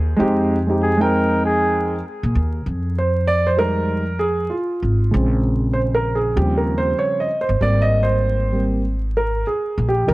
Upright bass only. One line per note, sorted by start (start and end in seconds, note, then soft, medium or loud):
0.00 0.16 D#2 medium
0.20 2.01 F2 medium
2.23 2.34 A#2 medium
2.35 2.63 D#2 medium
2.66 4.48 F2 medium
4.83 5.10 G#1 medium
5.14 6.33 A#1 loud
6.37 6.92 D#2 loud
7.49 7.60 G1 medium
7.61 9.42 G#1 medium
9.78 10.05 A#1 medium
10.08 10.14 C2 loud